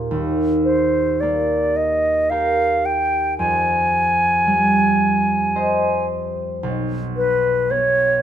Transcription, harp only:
0.00 0.15 A#2 soft
0.00 1.21 A#3 soft
0.00 0.16 F4 soft
0.00 2.30 G4 soft
0.00 0.15 C5 soft
0.11 3.43 D#2 soft
1.23 3.43 A#3 soft
2.31 6.21 G4 soft
2.31 3.43 A#4 soft
3.39 6.67 F2 soft
4.47 6.67 G3 soft
5.55 6.67 C5 soft
5.55 8.22 D#5 soft
6.63 8.22 B1 soft
7.70 8.22 B3 soft

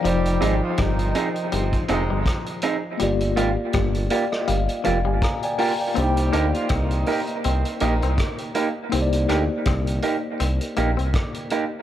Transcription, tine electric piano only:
0.00 2.94 F3 medium
0.00 2.95 D#4 medium
0.00 0.24 D5 medium
0.00 0.23 G5 medium
0.05 2.96 F4 medium
0.05 2.97 C5 medium
2.97 5.91 A#3 medium
2.97 5.92 F4 medium
2.97 5.92 G4 medium
3.03 4.09 D5 medium
4.11 4.30 D5 medium
4.32 4.47 D#5 medium
4.48 4.82 F5 medium
4.85 5.04 F5 medium
5.07 5.21 G#5 medium
5.22 5.42 A#5 medium
5.44 5.59 D5 medium
5.44 5.59 G5 medium
5.44 5.58 G#5 medium
5.60 5.79 F5 medium
5.60 5.80 G5 medium
5.60 5.79 A#5 medium
5.81 6.16 D5 medium
5.81 6.15 G5 medium
5.94 8.87 A#3 medium
5.94 6.03 D4 medium
5.94 8.89 G4 medium
6.00 8.91 D#4 medium
6.00 8.90 C5 medium
8.89 11.82 A#3 medium
8.89 11.82 D#4 medium
8.94 11.82 G4 medium
8.94 9.01 C5 medium
9.02 11.82 D5 medium

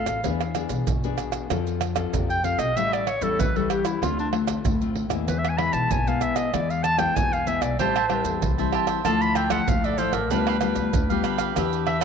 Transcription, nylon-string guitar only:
0.00 0.22 A2 medium
0.00 0.19 C4 medium
0.00 0.19 F4 medium
0.00 0.20 A4 medium
0.25 0.84 E3 medium
0.25 0.43 B3 medium
0.25 0.43 D4 medium
0.25 0.43 G#4 medium
0.55 0.85 B3 medium
0.55 0.85 D4 medium
0.55 0.86 G#4 medium
1.04 1.46 B3 medium
1.04 1.46 D4 medium
1.04 1.46 G#4 medium
1.51 2.10 F3 medium
1.51 1.80 C4 medium
1.51 1.80 F4 medium
1.51 1.81 A4 medium
1.96 2.39 C4 medium
1.96 2.39 F4 medium
1.96 2.39 A4 medium
2.14 2.73 C3 medium
2.44 2.71 C4 medium
2.44 2.71 F4 medium
2.44 2.71 A4 medium
2.76 3.36 A2 medium
2.76 3.06 G3 soft
2.76 3.06 C#4 medium
2.76 3.06 E4 medium
3.21 3.49 G3 medium
3.21 3.49 C#4 medium
3.21 3.49 E4 medium
3.40 3.99 E3 medium
3.56 3.98 G3 medium
3.56 3.98 C#4 medium
3.56 3.98 E4 medium
4.02 4.62 D3 medium
4.02 4.29 A3 medium
4.02 4.29 C4 soft
4.02 4.29 F4 medium
4.32 4.62 A3 medium
4.32 4.63 C4 medium
4.32 4.63 F4 medium
4.65 5.25 A2 medium
4.81 5.07 A3 medium
4.81 5.08 C4 medium
4.81 5.08 F4 medium
5.09 5.57 G#3 medium
5.09 5.57 B3 medium
5.09 5.57 E4 medium
5.27 5.87 E3 medium
5.58 6.01 G#3 medium
5.58 6.01 B3 medium
5.58 6.01 E4 medium
5.91 6.51 B2 medium
6.07 6.49 G#3 medium
6.07 6.49 B3 medium
6.07 6.49 E4 medium
6.53 7.13 E3 medium
6.53 6.96 G#3 medium
6.53 6.96 B3 medium
6.53 6.96 E4 medium
6.98 7.42 G#3 medium
6.98 7.42 B3 medium
6.98 7.42 E4 medium
7.16 7.76 B2 medium
7.47 7.74 G#3 medium
7.47 7.74 B3 medium
7.47 7.74 E4 medium
7.79 8.39 A2 medium
7.79 7.98 G3 medium
7.79 7.98 C4 medium
7.79 7.98 E4 medium
8.09 8.52 G3 medium
8.09 8.52 C4 medium
8.09 8.53 E4 medium
8.42 9.02 E3 medium
8.58 9.00 G3 medium
8.58 9.01 C4 medium
8.58 9.01 E4 medium
9.05 9.65 D3 medium
9.05 9.47 F3 medium
9.05 9.47 A3 medium
9.05 9.48 E4 medium
9.50 9.93 F3 medium
9.50 9.93 A3 medium
9.50 9.93 E4 medium
9.68 10.28 A2 medium
9.98 10.17 F3 medium
9.98 10.17 A3 medium
9.98 10.18 E4 medium
10.31 10.91 D3 medium
10.31 10.57 G3 medium
10.31 10.58 B3 medium
10.31 10.58 F4 medium
10.61 10.91 G3 medium
10.61 10.91 B3 medium
10.61 10.91 F4 medium
10.94 11.53 D3 medium
11.10 11.52 G3 medium
11.10 11.52 B3 medium
11.10 11.52 F4 medium
11.56 12.04 E3 medium
11.56 11.98 D4 medium
11.56 11.98 G4 medium
11.56 11.98 B4 medium
12.01 12.04 D4 medium

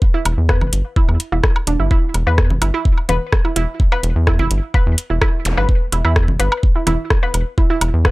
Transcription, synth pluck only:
0.14 0.22 E4 loud
0.49 0.58 B4 loud
0.96 1.05 E4 loud
1.32 1.38 E4 medium
1.67 1.73 D4 medium
1.80 1.87 E4 medium
1.91 1.99 E4 loud
2.27 2.35 B4 loud
2.62 2.67 E4 medium
2.74 2.82 E4 loud
3.09 3.17 B4 loud
3.45 3.50 E4 medium
3.56 3.65 E4 loud
3.92 4.00 B4 loud
4.27 4.33 E4 medium
4.39 4.47 E4 loud
4.74 4.83 B4 loud
5.10 5.15 E4 medium
5.21 5.30 E4 loud
5.57 5.65 B4 loud
5.92 5.98 E4 medium
6.05 6.13 E4 loud
6.39 6.48 B4 loud
6.76 6.81 E4 medium
6.87 6.95 E4 loud
7.23 7.31 B4 loud
7.58 7.63 E4 medium
7.70 7.78 E4 loud
8.05 8.11 B4 loud

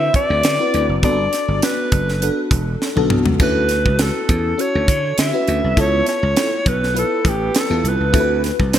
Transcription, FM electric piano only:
0.00 0.60 C4 medium
0.00 0.60 E4 medium
0.00 0.61 F#4 medium
0.00 0.61 B4 medium
0.60 0.88 C4 medium
0.60 0.88 E4 medium
0.60 0.88 F#4 medium
0.60 0.89 B4 medium
1.02 1.79 B3 medium
1.02 1.79 D4 medium
1.02 1.80 F#4 medium
1.02 1.80 A4 medium
2.21 2.70 B3 medium
2.21 2.70 D4 medium
2.21 2.70 F#4 medium
2.21 2.70 A4 medium
2.96 3.24 B3 medium
2.96 3.25 D4 medium
2.96 3.25 F#4 medium
2.96 3.25 A4 medium
3.40 4.16 C#4 medium
3.40 4.16 E4 medium
3.40 4.17 F#4 medium
3.40 4.17 A4 medium
4.58 5.06 C#4 medium
4.58 5.06 E4 medium
4.58 5.06 F#4 medium
4.58 5.07 A4 medium
5.33 5.61 C#4 medium
5.33 5.62 E4 medium
5.33 5.62 F#4 medium
5.33 5.62 B4 medium
5.77 6.53 B3 medium
5.77 6.53 E4 medium
5.77 6.53 F4 medium
5.77 6.53 A4 medium
6.94 7.42 B3 medium
6.94 7.43 E4 medium
6.94 7.43 F4 medium
6.94 7.43 B4 medium
7.70 7.98 B3 medium
7.70 7.98 E4 medium
7.70 7.99 F4 medium
7.70 7.99 A4 medium
8.13 8.79 C4 medium
8.13 8.79 E4 medium
8.13 8.79 F#4 medium
8.13 8.21 A4 medium
8.20 8.79 B4 medium

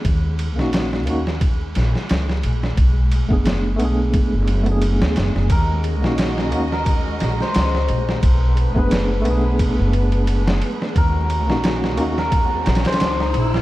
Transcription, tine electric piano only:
0.56 1.03 A#3 medium
0.56 1.03 C#4 medium
0.56 1.04 D#4 medium
0.60 1.05 F#4 medium
1.06 1.23 A#3 medium
1.06 1.23 C#4 medium
1.06 1.24 D#4 medium
1.10 1.25 F#4 loud
3.29 3.75 A3 medium
3.29 3.76 B3 medium
3.29 3.77 D4 medium
3.33 3.77 G#4 medium
3.76 4.61 A3 medium
3.76 4.63 B3 medium
3.81 4.64 D4 medium
3.81 4.65 G#4 medium
4.63 5.47 A3 medium
4.63 5.48 B3 medium
4.69 5.49 D4 medium
4.69 5.51 G#4 medium
6.02 6.48 A#3 medium
6.02 6.49 C#4 medium
6.02 6.50 D#4 medium
6.06 6.50 F#4 medium
6.51 6.68 A#3 medium
6.51 6.69 C#4 medium
6.51 6.70 D#4 medium
6.55 6.70 F#4 medium
8.75 9.21 A3 medium
8.75 9.22 B3 medium
8.75 9.23 D4 medium
8.79 9.23 G#4 medium
9.22 10.92 A3 medium
9.22 10.94 B3 medium
9.28 10.95 D4 medium
9.28 10.96 G#4 loud
11.47 11.94 A#3 medium
11.47 11.94 C#4 medium
11.47 11.95 D#4 medium
11.52 11.96 F#4 medium
11.97 12.14 A#3 medium
11.97 12.14 C#4 medium
11.97 12.15 D#4 medium
12.01 12.16 F#4 loud

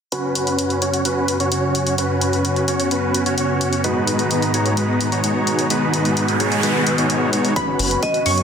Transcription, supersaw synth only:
0.12 0.79 C#4 medium
0.12 0.79 F#4 medium
0.12 0.79 B4 medium
0.82 1.02 C#4 medium
0.82 1.02 F#4 medium
0.82 1.02 C#5 medium
1.05 1.37 C#4 medium
1.05 1.37 F#4 medium
1.05 1.37 B4 loud
1.40 1.49 C#4 medium
1.40 1.49 F#4 medium
1.40 1.49 C#5 medium
1.51 1.95 C#4 medium
1.51 1.95 F#4 medium
1.51 1.95 C#5 medium
1.98 2.65 C#4 medium
1.98 2.65 F#4 medium
1.98 2.65 B4 medium
2.68 2.88 C#4 medium
2.68 2.88 F#4 medium
2.68 2.88 C#5 medium
2.91 3.23 C#4 medium
2.91 3.23 F#4 medium
2.91 3.23 B4 loud
3.26 3.35 C#4 medium
3.26 3.35 F#4 medium
3.26 3.35 C#5 medium
3.38 3.81 C#4 medium
3.38 3.81 F#4 medium
3.38 3.81 C#5 medium
3.84 4.51 G#3 medium
3.84 4.51 B3 medium
3.84 4.51 D#4 medium
3.84 4.51 F#4 medium
3.84 4.51 B4 medium
4.54 4.74 G#3 medium
4.54 4.74 B3 medium
4.54 4.74 D#4 medium
4.54 4.74 F#4 medium
4.54 4.74 C#5 medium
4.77 5.09 G#3 medium
4.77 5.09 B3 medium
4.77 5.09 D#4 medium
4.77 5.09 F#4 medium
4.77 5.09 B4 loud
5.12 5.21 G#3 medium
5.12 5.21 B3 medium
5.12 5.21 D#4 medium
5.12 5.21 F#4 medium
5.12 5.21 C#5 loud
5.24 5.67 G#3 medium
5.24 5.67 B3 medium
5.24 5.67 D#4 medium
5.24 5.67 F#4 medium
5.24 5.67 C#5 medium
5.70 6.37 G#3 medium
5.70 6.37 B3 medium
5.70 6.37 D#4 medium
5.70 6.37 F#4 medium
5.70 6.37 B4 medium
6.40 6.60 G#3 medium
6.40 6.60 B3 medium
6.40 6.60 D#4 medium
6.40 6.60 F#4 medium
6.40 6.60 C#5 medium
6.63 6.95 G#3 medium
6.63 6.95 B3 medium
6.63 6.95 D#4 medium
6.63 6.95 F#4 medium
6.63 6.95 B4 loud
6.98 7.30 G#3 medium
6.98 7.30 B3 medium
6.98 7.30 D#4 medium
6.98 7.30 F#4 medium
6.98 7.30 C#5 medium
7.33 7.53 G#3 medium
7.33 7.53 B3 medium
7.33 7.53 D#4 medium
7.33 7.53 F#4 medium
7.33 7.53 C#5 medium
7.56 8.23 C#4 medium
7.56 8.23 F#4 medium
7.56 8.23 B4 medium
8.26 8.43 C#4 medium
8.26 8.43 F#4 medium
8.26 8.43 C#5 medium

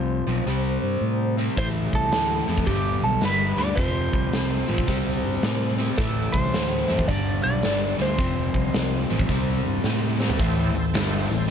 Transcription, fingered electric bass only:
0.00 0.21 C2 medium
0.27 0.43 B1 medium
0.46 0.76 C2 medium
0.83 0.99 G2 medium
1.01 1.48 A2 medium
1.57 1.87 A1 medium
1.93 2.09 C2 medium
2.12 2.42 D2 medium
2.48 2.64 F2 medium
2.67 2.97 G1 medium
3.02 3.19 B1 medium
3.22 3.52 G1 medium
3.57 3.73 D2 medium
3.77 4.08 F1 medium
4.13 4.30 C2 medium
4.33 4.63 C2 medium
4.69 4.85 A1 medium
4.88 5.18 C2 medium
5.23 5.40 G2 medium
5.43 5.89 A2 medium
5.98 6.28 A1 medium
6.34 6.50 C2 medium
6.54 6.83 D2 medium
6.91 7.06 F2 medium
7.09 7.39 G1 medium
7.44 7.60 B1 medium
7.63 7.93 G1 medium
8.00 8.16 D2 medium
8.19 8.49 F1 medium
8.54 8.70 C2 medium
8.74 9.04 C2 medium
9.11 9.26 A1 medium
9.29 9.59 C2 medium
9.65 9.81 G2 medium
9.84 10.30 A2 medium
10.39 10.72 A1 medium
10.74 10.92 A1 medium
10.94 11.27 G1 medium
11.30 11.47 A1 medium

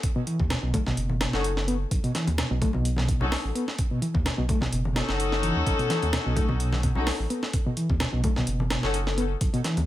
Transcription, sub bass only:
0.40 0.55 D#2 medium
0.63 0.92 B1 medium
0.97 1.27 F#1 medium
1.33 1.85 F#1 medium
1.91 2.00 B1 loud
2.27 2.42 D#2 medium
2.50 3.14 B1 medium
3.21 3.36 B1 loud
3.44 3.52 A1 medium
4.15 4.30 D#2 medium
4.38 4.67 B1 medium
4.73 5.02 F#1 medium
5.09 5.43 F#1 medium
5.43 5.52 F#1 medium
5.56 5.63 D#2 loud
5.66 5.75 B1 loud
6.03 6.18 D#2 medium
6.26 6.90 B1 medium
6.96 7.11 B1 loud
7.19 7.27 A1 medium
7.90 8.05 D#2 medium
8.13 8.42 B1 medium
8.48 8.77 F#1 loud
8.83 9.35 F#1 medium
9.41 9.50 B1 loud
9.77 9.86 D#2 medium

